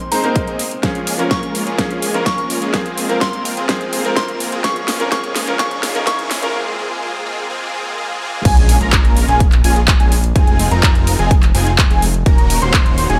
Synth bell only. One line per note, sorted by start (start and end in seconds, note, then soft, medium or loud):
0.12 0.47 A#5 medium
1.31 1.52 C#6 medium
2.26 2.47 C#6 medium
3.21 3.42 C6 medium
4.17 4.37 C6 medium
4.64 4.85 C#6 medium
5.12 5.32 C#6 medium
5.59 5.80 C#6 loud
6.07 6.28 C#6 medium